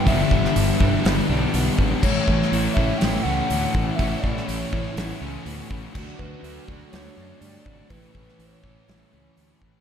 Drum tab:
CC |----------------|x---------------|----------------|x---------------|
HH |o---o---o---o---|----o---o---o---|o---o---o---o---|----o---o---o---|
SD |---o----o-------|---o----o-------|---o----o-------|--------o-------|
BD |o-o---o-------o-|o-o---o-------o-|o-o---o-------o-|o-o---o-------o-|

CC |----------------|
HH |o---o---o---o---|
SD |---o----o-------|
BD |o-o---o-------o-|